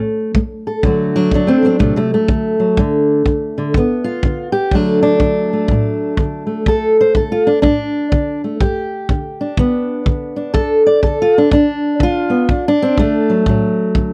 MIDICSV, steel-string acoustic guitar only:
0, 0, Header, 1, 2, 480
1, 0, Start_track
1, 0, Tempo, 485437
1, 827, Time_signature, 4, 2, 24, 8
1, 13974, End_track
2, 0, Start_track
2, 0, Title_t, "Steel-string acoustic guitar"
2, 0, Program_c, 0, 25
2, 0, Note_on_c, 0, 45, 67
2, 0, Note_on_c, 0, 57, 55
2, 311, Note_off_c, 0, 45, 0
2, 337, Note_off_c, 0, 57, 0
2, 349, Note_on_c, 0, 57, 69
2, 662, Note_on_c, 0, 69, 50
2, 790, Note_off_c, 0, 57, 0
2, 815, Note_off_c, 0, 69, 0
2, 821, Note_on_c, 0, 38, 76
2, 828, Note_on_c, 0, 50, 52
2, 838, Note_on_c, 0, 54, 49
2, 848, Note_on_c, 0, 57, 52
2, 858, Note_on_c, 0, 66, 51
2, 1133, Note_off_c, 0, 54, 0
2, 1144, Note_off_c, 0, 66, 0
2, 1144, Note_on_c, 0, 54, 78
2, 1144, Note_on_c, 0, 62, 98
2, 1266, Note_off_c, 0, 38, 0
2, 1295, Note_off_c, 0, 50, 0
2, 1304, Note_off_c, 0, 62, 0
2, 1306, Note_off_c, 0, 54, 0
2, 1307, Note_on_c, 0, 50, 61
2, 1326, Note_on_c, 0, 54, 75
2, 1337, Note_on_c, 0, 62, 82
2, 1443, Note_off_c, 0, 57, 0
2, 1455, Note_on_c, 0, 57, 77
2, 1467, Note_on_c, 0, 60, 85
2, 1476, Note_off_c, 0, 54, 0
2, 1542, Note_off_c, 0, 57, 0
2, 1607, Note_on_c, 0, 54, 47
2, 1626, Note_off_c, 0, 60, 0
2, 1628, Note_on_c, 0, 57, 64
2, 1633, Note_off_c, 0, 57, 0
2, 1637, Note_on_c, 0, 60, 82
2, 1749, Note_off_c, 0, 50, 0
2, 1771, Note_off_c, 0, 60, 0
2, 1773, Note_on_c, 0, 48, 69
2, 1775, Note_on_c, 0, 57, 81
2, 1779, Note_on_c, 0, 45, 66
2, 1928, Note_off_c, 0, 48, 0
2, 1937, Note_off_c, 0, 57, 0
2, 1940, Note_on_c, 0, 48, 68
2, 1949, Note_on_c, 0, 57, 84
2, 1961, Note_off_c, 0, 62, 0
2, 2103, Note_off_c, 0, 48, 0
2, 2103, Note_off_c, 0, 57, 0
2, 2115, Note_on_c, 0, 57, 74
2, 2225, Note_off_c, 0, 45, 0
2, 2260, Note_on_c, 0, 50, 63
2, 2555, Note_off_c, 0, 54, 0
2, 2567, Note_on_c, 0, 54, 45
2, 2706, Note_off_c, 0, 50, 0
2, 2750, Note_off_c, 0, 54, 0
2, 2750, Note_on_c, 0, 43, 78
2, 2757, Note_on_c, 0, 50, 53
2, 3191, Note_off_c, 0, 43, 0
2, 3210, Note_off_c, 0, 50, 0
2, 3222, Note_on_c, 0, 50, 65
2, 3517, Note_off_c, 0, 50, 0
2, 3537, Note_on_c, 0, 50, 53
2, 3713, Note_off_c, 0, 50, 0
2, 3725, Note_on_c, 0, 50, 67
2, 3733, Note_on_c, 0, 59, 51
2, 3998, Note_on_c, 0, 65, 84
2, 4031, Note_off_c, 0, 57, 0
2, 4158, Note_off_c, 0, 50, 0
2, 4203, Note_on_c, 0, 50, 67
2, 4468, Note_off_c, 0, 65, 0
2, 4472, Note_on_c, 0, 67, 85
2, 4638, Note_off_c, 0, 50, 0
2, 4658, Note_off_c, 0, 59, 0
2, 4676, Note_on_c, 0, 38, 77
2, 4678, Note_on_c, 0, 50, 53
2, 4690, Note_on_c, 0, 54, 51
2, 4694, Note_off_c, 0, 67, 0
2, 4694, Note_on_c, 0, 62, 74
2, 4696, Note_on_c, 0, 57, 56
2, 4957, Note_off_c, 0, 62, 0
2, 4969, Note_on_c, 0, 62, 101
2, 5115, Note_off_c, 0, 38, 0
2, 5145, Note_off_c, 0, 50, 0
2, 5148, Note_on_c, 0, 50, 69
2, 5465, Note_off_c, 0, 57, 0
2, 5469, Note_on_c, 0, 57, 49
2, 5591, Note_off_c, 0, 50, 0
2, 5648, Note_on_c, 0, 45, 69
2, 6080, Note_off_c, 0, 45, 0
2, 6113, Note_on_c, 0, 50, 63
2, 6381, Note_off_c, 0, 57, 0
2, 6393, Note_on_c, 0, 57, 43
2, 6553, Note_off_c, 0, 50, 0
2, 6591, Note_on_c, 0, 38, 78
2, 6593, Note_off_c, 0, 62, 0
2, 6606, Note_on_c, 0, 69, 85
2, 6917, Note_off_c, 0, 69, 0
2, 6928, Note_on_c, 0, 72, 95
2, 7032, Note_off_c, 0, 38, 0
2, 7076, Note_on_c, 0, 50, 68
2, 7078, Note_off_c, 0, 72, 0
2, 7086, Note_on_c, 0, 69, 71
2, 7225, Note_off_c, 0, 57, 0
2, 7236, Note_on_c, 0, 65, 84
2, 7380, Note_off_c, 0, 69, 0
2, 7384, Note_on_c, 0, 62, 86
2, 7392, Note_off_c, 0, 65, 0
2, 7515, Note_off_c, 0, 50, 0
2, 7524, Note_off_c, 0, 62, 0
2, 7535, Note_on_c, 0, 62, 103
2, 7564, Note_on_c, 0, 45, 67
2, 7999, Note_off_c, 0, 45, 0
2, 8032, Note_on_c, 0, 50, 59
2, 8315, Note_off_c, 0, 62, 0
2, 8346, Note_on_c, 0, 57, 45
2, 8473, Note_off_c, 0, 50, 0
2, 8511, Note_on_c, 0, 43, 76
2, 8516, Note_on_c, 0, 67, 70
2, 8520, Note_off_c, 0, 54, 0
2, 8521, Note_off_c, 0, 57, 0
2, 8952, Note_off_c, 0, 43, 0
2, 9002, Note_on_c, 0, 50, 69
2, 9301, Note_on_c, 0, 62, 63
2, 9438, Note_off_c, 0, 50, 0
2, 9478, Note_on_c, 0, 50, 69
2, 9482, Note_on_c, 0, 59, 63
2, 9916, Note_off_c, 0, 50, 0
2, 9951, Note_on_c, 0, 50, 60
2, 10243, Note_off_c, 0, 62, 0
2, 10247, Note_on_c, 0, 62, 54
2, 10393, Note_off_c, 0, 50, 0
2, 10410, Note_off_c, 0, 67, 0
2, 10413, Note_off_c, 0, 59, 0
2, 10418, Note_on_c, 0, 69, 94
2, 10419, Note_on_c, 0, 43, 77
2, 10740, Note_off_c, 0, 69, 0
2, 10744, Note_on_c, 0, 74, 88
2, 10867, Note_off_c, 0, 43, 0
2, 10906, Note_off_c, 0, 74, 0
2, 10907, Note_on_c, 0, 50, 66
2, 10914, Note_on_c, 0, 69, 77
2, 11088, Note_off_c, 0, 62, 0
2, 11092, Note_on_c, 0, 65, 96
2, 11231, Note_off_c, 0, 69, 0
2, 11240, Note_off_c, 0, 65, 0
2, 11252, Note_on_c, 0, 62, 88
2, 11350, Note_off_c, 0, 50, 0
2, 11379, Note_on_c, 0, 50, 66
2, 11388, Note_off_c, 0, 62, 0
2, 11400, Note_on_c, 0, 62, 100
2, 11827, Note_off_c, 0, 50, 0
2, 11859, Note_on_c, 0, 50, 61
2, 11896, Note_on_c, 0, 65, 109
2, 12161, Note_on_c, 0, 59, 46
2, 12167, Note_off_c, 0, 62, 0
2, 12306, Note_off_c, 0, 50, 0
2, 12326, Note_off_c, 0, 59, 0
2, 12364, Note_on_c, 0, 38, 80
2, 12371, Note_on_c, 0, 62, 51
2, 12523, Note_off_c, 0, 65, 0
2, 12535, Note_off_c, 0, 62, 0
2, 12539, Note_on_c, 0, 62, 102
2, 12681, Note_on_c, 0, 60, 100
2, 12800, Note_off_c, 0, 38, 0
2, 12835, Note_off_c, 0, 60, 0
2, 12838, Note_on_c, 0, 50, 65
2, 12848, Note_on_c, 0, 57, 103
2, 13147, Note_on_c, 0, 54, 52
2, 13164, Note_off_c, 0, 62, 0
2, 13276, Note_off_c, 0, 50, 0
2, 13321, Note_on_c, 0, 45, 71
2, 13335, Note_off_c, 0, 54, 0
2, 13339, Note_on_c, 0, 54, 52
2, 13757, Note_off_c, 0, 45, 0
2, 13809, Note_on_c, 0, 50, 61
2, 13974, Note_off_c, 0, 50, 0
2, 13974, Note_off_c, 0, 54, 0
2, 13974, Note_off_c, 0, 57, 0
2, 13974, End_track
0, 0, End_of_file